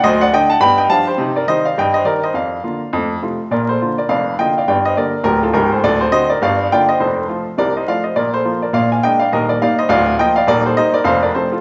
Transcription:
0.03 D2 F#3 C5 D#5
0.21 D5 F#5
0.32 D3 A3 D4 D#5 G5
0.50 F#5 A5
0.60 G2 B3 G5 B5
0.78 D#5 G5
0.89 F3 G3 D4 F5 A5
1.07 G4 C5
1.18 C3 D#4
1.36 A#4 D5
1.48 D#3 G3 D#4 C5 D#5
1.65 D5 F5
1.78 G2 D#5 G5
1.94 C5 D#5
2.05 D#3 G3 D#4 A#4 D5
2.23 C5 D#5
2.34 F2 D5 F5
2.64 D3 A#3 F4
2.93 F2 A3
3.22 C3 A3 F4
3.51 A#1 A#2 A#4 D5
3.69 A4 C5
3.81 D3 A#3 F4
3.98 A#4 D5
4.09 F1 F2 D5 F5
4.39 D3 A#3 F4 D#5 G5
4.58 D5 F5
4.67 G1 G2 D5 G5
4.85 C5 D#5
4.96 D3 A#3 G4 A#4 D5
5.24 D1 D2 G4 A#4
5.43 F4 A4
5.53 C#1 C#2 G4 A#4
5.72 A4 C5
5.83 D1 D2 A4 D5
6.01 A4 C5
6.11 D3 C4 F#4 C5 D#5
6.30 A#4 D5
6.42 G1 G2 D5 F5
6.72 D3 A#3 F4 D5 G5
6.89 C5 D#5
7.00 F1 F2 A4 C5
7.28 F3 A3 F4
7.58 C2 C3 A#4 D5
7.77 C5 D#5
7.87 F3 A3 F4 D5 F5
8.04 C5 D#5
8.16 A#1 A#2 A#4 D5
8.34 A4 C5
8.44 F3 A#3 F4
8.62 A#4 D5
8.73 A#1 A#2 D5 F5
8.92 F5 G#5
9.03 G#3 A#3 D4 D#5 G5
9.19 D5 F5
9.32 D#1 D#2 A#4 D#5
9.49 A#4 D5
9.61 G3 A#3 D#4 D5 F5
9.79 C5 D#5
9.89 D1 D2 D5 F5
10.19 F3 A#3 F4 D#5 G5
10.36 D5 F5
10.47 D#1 D#2 A#4 D5
10.66 A4 C5
10.77 G3 A#3 D#4 C5 D#5
10.94 A#4 D5
11.04 F1 F2 C5 F5
11.23 A#4 D5
11.35 F3 A3 C4 A4 C5
11.52 F4 A4

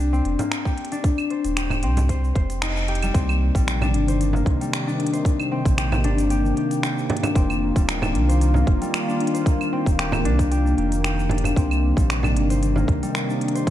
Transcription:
Already playing: C2 A#3 C4 D4 G4 C5
0.00 shaker
0.13 C4, shaker
0.25 F1, closed hi-hat
0.39 A#3, closed hi-hat, frame drum, shaker
0.52 finger snap, closed hi-hat, shaker
0.65 G4, kick, shaker
0.78 closed hi-hat
0.85 closed hi-hat
0.92 D4, closed hi-hat, shaker
1.04 kick, closed hi-hat, shaker
1.18 claves, shaker
1.30 C5, closed hi-hat
1.44 D#1, closed hi-hat, shaker
1.57 G4, finger snap, closed hi-hat, shaker
1.70 frame drum, claves, shaker
1.83 C2 C4, closed hi-hat
1.97 closed hi-hat, frame drum, shaker
2.09 C5, kick, closed hi-hat, shaker
2.24 shaker
2.35 F1 C5, kick, closed hi-hat
2.50 closed hi-hat, shaker
2.62 D#4, finger snap, closed hi-hat, shaker
2.77 shaker
2.88 G4, closed hi-hat
2.95 closed hi-hat
3.02 G3, closed hi-hat, claves, shaker
3.14 C2 C3 D#3 A#3 C4, kick, closed hi-hat, shaker
3.29 claves, shaker
3.55 A#1 G3, kick, closed hi-hat, shaker
3.68 finger snap, closed hi-hat, shaker
3.81 D4, frame drum, claves, shaker
3.94 G1, closed hi-hat
4.08 C5, closed hi-hat, shaker
4.21 closed hi-hat, shaker
4.33 A#3, frame drum, shaker
4.46 C2, kick, closed hi-hat
4.61 G3, closed hi-hat, shaker
4.73 finger snap, shaker
4.87 D4, shaker
5.00 closed hi-hat
5.07 closed hi-hat
5.13 C5, closed hi-hat, shaker
5.25 kick, closed hi-hat, shaker
5.40 claves, shaker
5.52 C4
5.65 A#1, kick, closed hi-hat, shaker
5.78 G4, finger snap, closed hi-hat, shaker
5.92 frame drum, claves, shaker
6.04 G1 D4, closed hi-hat
6.18 closed hi-hat, shaker
6.30 G4, closed hi-hat, shaker
6.46 shaker
6.57 G4, closed hi-hat
6.71 closed hi-hat, shaker
6.83 G4, finger snap, shaker
6.98 shaker
7.09 D4, closed hi-hat, frame drum
7.17 closed hi-hat
7.23 closed hi-hat, frame drum, claves, shaker
7.35 F1 D#3 C4 F4, kick, closed hi-hat, shaker
7.50 claves, shaker
7.76 D#1 G3, kick, closed hi-hat, shaker
7.89 finger snap, closed hi-hat, shaker
8.02 D4, frame drum, claves, shaker
8.15 C2, closed hi-hat
8.29 C5, closed hi-hat, shaker
8.41 closed hi-hat, shaker
8.54 A#3, frame drum, shaker
8.67 F1, kick, closed hi-hat
8.81 G3, closed hi-hat, shaker
8.94 finger snap, shaker
9.08 D4, shaker
9.20 closed hi-hat
9.27 closed hi-hat
9.34 C5, closed hi-hat, shaker
9.46 kick, closed hi-hat, shaker
9.61 claves, shaker
9.73 C4
9.86 D#1, kick, closed hi-hat, shaker
9.99 G4, finger snap, closed hi-hat, shaker
10.12 frame drum, claves, shaker
10.25 C2 D4, closed hi-hat
10.39 kick, closed hi-hat, shaker
10.51 G4, closed hi-hat, shaker
10.67 shaker
10.78 F1 G4, closed hi-hat
10.92 closed hi-hat, shaker
11.04 G4, finger snap, shaker
11.19 shaker
11.29 D4, closed hi-hat, frame drum
11.38 closed hi-hat
11.44 closed hi-hat, frame drum, claves, shaker
11.56 C2 C3 D#3 C4, kick, closed hi-hat, shaker
11.71 claves, shaker
11.97 A#1 G3, kick, closed hi-hat, shaker
12.10 finger snap, closed hi-hat, shaker
12.23 D4, frame drum, claves, shaker
12.35 G1, closed hi-hat
12.50 C5, closed hi-hat, shaker
12.63 closed hi-hat, shaker
12.76 A#3, frame drum, shaker
12.88 C2, kick, closed hi-hat
13.03 G3, closed hi-hat, shaker
13.15 finger snap, shaker
13.29 D4, shaker
13.41 closed hi-hat
13.48 closed hi-hat
13.55 C5, closed hi-hat, shaker
13.67 C4, kick

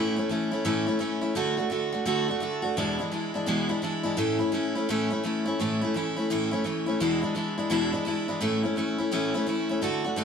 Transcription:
Already playing: A2 E3 A3 C#4 E4
0.16 A3 C#4 E4
0.29 E3 A3 C#4 E4
0.51 A3 C#4 E4
0.65 A2 E3 A3 C#4 E4
0.86 A3 C#4 E4
0.99 E3 A3 C#4 E4
1.21 A3 C#4 E4
1.35 D3 A3 D4 F#4
1.57 A3 D4 F#4
1.70 D3 A3 D4 F#4
1.92 A3 D4 F#4
2.06 D3 A3 D4 F#4
2.28 A3 D4 F#4
2.40 D3 A3 D4 F#4
2.62 A3 D4 F#4
2.77 E2 B2 E3 G#3 D4 E4
2.99 E3 G#3 D4 E4
3.12 E3 G#3 D4 E4
3.34 E3 G#3 D4 E4
3.46 E2 B2 E3 G#3 D4 E4
3.69 E3 G#3 D4 E4
3.82 E3 G#3 D4 E4
4.03 E3 G#3 D4 E4
4.17 A2 E3 A3 C#4 E4
4.39 A3 C#4 E4
4.52 E3 A3 C#4 E4
4.75 A3 C#4 E4
4.89 A2 E3 A3 C#4 E4
5.11 A3 C#4 E4
5.24 E3 A3 C#4 E4
5.45 A3 C#4 E4
5.60 A2 E3 A3 C#4 E4
5.81 A3 C#4 E4
5.94 E3 A3 C#4 E4
6.16 A3 C#4 E4
6.30 A2 E3 A3 C#4 E4
6.51 A3 C#4 E4
6.64 E3 A3 C#4 E4
6.86 A3 C#4 E4
7.00 E2 B2 E3 G#3 D4 E4
7.22 E3 G#3 D4 E4
7.35 E3 G#3 D4 E4
7.58 E3 G#3 D4 E4
7.70 E2 B2 E3 G#3 D4 E4
7.92 E3 G#3 D4 E4
8.05 E3 G#3 D4 E4
8.28 E3 G#3 D4 E4
8.41 A2 E3 A3 C#4 E4
8.63 A3 C#4 E4
8.76 E3 A3 C#4 E4
8.98 A3 C#4 E4
9.12 A2 E3 A3 C#4 E4
9.34 A3 C#4 E4
9.46 E3 A3 C#4 E4
9.69 A3 C#4 E4
9.82 D3 A3 D4 F#4
10.04 A3 D4 F#4
10.16 D3 A3 D4 F#4

